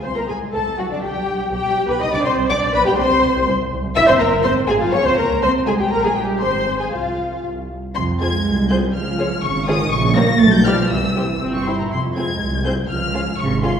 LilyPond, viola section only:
\new Staff \with { instrumentName = "Viola section" } { \time 2/4 \key g \phrygian \tempo 4 = 122 c''16 bes'16 aes'8 a'8 fis'16 d'16 | g'4 g'8. b'16 | ees''16 d''16 c''8 d''8 b'16 g'16 | c''4 r4 |
\key f \minor e''16 c''16 bes'8 c''8 aes'16 f'16 | des''16 c''16 bes'8 c''8 aes'16 g'16 | bes'16 aes'16 g'8 c''8. aes'16 | f'4 r4 |
r8 <aes f'>8 r8 <aes f'>8 | r8 <aes f'>8 r8 <aes f'>8 | r8 <g g'>8 r8 <g g'>8 | r8 <c' g'>8 c'8 e'8 |
r8 <c' f'>8 r8 <c' f'>8 | r8 <des' f'>8 r8 <des' f'>8 | }